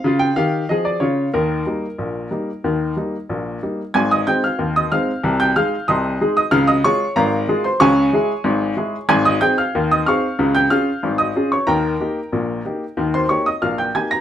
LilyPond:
<<
  \new Staff \with { instrumentName = "Upright piano" } { \time 2/4 \key aes \major \tempo 4 = 93 f''16 g''16 f''8 ees''16 d''16 des''8 | bes'2~ | bes'4 r4 | <aes'' aes'''>16 <ees'' ees'''>16 <g'' g'''>16 <f'' f'''>8 <ees'' ees'''>16 <f'' f'''>8~ |
<f'' f'''>16 <g'' g'''>16 <f'' f'''>8 <ees'' c''' ees'''>8. <ees'' ees'''>16 | <f'' f'''>16 <ees'' ees'''>16 <des'' des'''>8 <bes' f'' bes''>8. <c'' c'''>16 | <des'' aes'' des'''>2 | <aes'' aes'''>16 <ees'' ees'''>16 <g'' g'''>16 <f'' f'''>8 <ees'' ees'''>16 <f'' des''' f'''>8~ |
<f'' des''' f'''>16 <g'' g'''>16 <f'' f'''>8. <ees'' ees'''>8 <des'' des'''>16 | <bes' g'' bes''>2~ | <bes' g'' bes''>16 <c'' c'''>16 <des'' des'''>16 <ees'' ees'''>16 <f'' f'''>16 <g'' g'''>16 <aes'' aes'''>16 <bes'' bes'''>16 | }
  \new Staff \with { instrumentName = "Upright piano" } { \clef bass \time 2/4 \key aes \major <des f'>8 <ees g'>8 <f aes'>8 <des f'>8 | <ees, ees>8 <g bes ees'>8 <bes,, bes,>8 <g bes ees'>8 | <ees, ees>8 <g bes ees'>8 <bes,, bes,>8 <g bes ees'>8 | <aes,, aes,>8 <aes c' ees'>8 <ees, ees>8 <aes c' ees'>8 |
<c, c>8 <aes ees' aes'>8 <c, c>8 <aes ees' aes'>8 | <des, des>8 <aes f' aes'>8 <aes,, aes,>8 <aes f' aes'>8 | <des, des>8 <aes fes' aes'>8 <aes,, aes,>8 <aes fes' aes'>8 | <aes,, aes,>8 <c' ees' aes'>8 <ees, ees>8 <c' ees' aes'>8 |
<des, des>8 <des' f' aes'>8 <aes,, aes,>8 <des' f' aes'>8 | <ees, ees>8 <bes ees' g'>8 <bes,, bes,>8 <bes ees' g'>8 | <ees, ees>8 <bes ees' g'>8 <bes,, bes,>8 <bes ees' g'>8 | }
>>